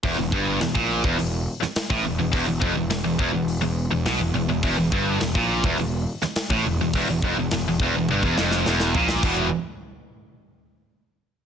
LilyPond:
<<
  \new Staff \with { instrumentName = "Distorted electric guitar" } { \clef bass \time 4/4 \key e \phrygian \tempo 4 = 104 e,16 e,16 g,8 e,16 ais,8 e,16 e,8 r8. a,16 e,16 e,16 | e,16 e,16 f,16 e,16 e,16 e,16 e,16 e,8 e,8 e,16 b,16 e,16 e,16 e,16 | e,16 e,16 g,8 e,16 ais,8 e,16 e,8 r8. a,16 e,16 e,16 | e,16 e,16 f,16 e,16 e,16 e,16 e,16 e,16 g,16 e,16 f,8 e,8 ais,8 |
<e, b, e>8 r2. r8 | }
  \new Staff \with { instrumentName = "Distorted electric guitar" } { \clef bass \time 4/4 \key e \phrygian e,16 e,16 g,8 e,16 ais,8 e,16 e,8 r8. a,16 e,16 e,16 | e,16 e,16 f,16 e,16 e,16 e,16 e,16 e,8 e,8 e,16 b,16 e,16 e,16 e,16 | e,16 e,16 g,8 e,16 ais,8 e,16 e,8 r8. a,16 e,16 e,16 | e,16 e,16 f,16 e,16 e,16 e,16 e,16 e,16 g,16 e,16 f,8 e,8 ais,8 |
<e, b, e>8 r2. r8 | }
  \new Staff \with { instrumentName = "Picked electric bass" } { \clef bass \time 4/4 \key e \phrygian e,,16 e,,16 g,,8 e,,16 ais,,8 e,,16 e,,8 r8. a,,16 e,,16 e,,16 | e,,16 e,,16 f,,16 e,,16 e,,16 e,,16 e,,16 e,,8 e,,8 e,,16 b,,16 e,,16 e,,16 e,,16 | e,,16 e,,16 g,,8 e,,16 ais,,8 e,,16 e,,8 r8. a,,16 e,,16 e,,16 | e,,16 e,,16 f,,16 e,,16 e,,16 e,,16 e,,16 e,,16 g,,16 e,,16 f,,8 e,,8 ais,,8 |
e,,8 r2. r8 | }
  \new DrumStaff \with { instrumentName = "Drums" } \drummode { \time 4/4 <hho bd>8 bd8 <hho sn>16 bd8 bd16 hho8. sn16 <hho sn>16 bd8. | <hho bd>8 bd8 <hho sn>8 bd8 hho4 <hho sn>4 | <hho bd>8 bd8 <hho sn>16 bd8 bd16 hho8. sn16 <hho sn>16 bd8. | <hho bd>8 bd8 <hho sn>8 bd8 tommh16 bd16 sn16 sn16 sn16 sn16 tomfh16 sn16 |
<cymc bd>4 r4 r4 r4 | }
>>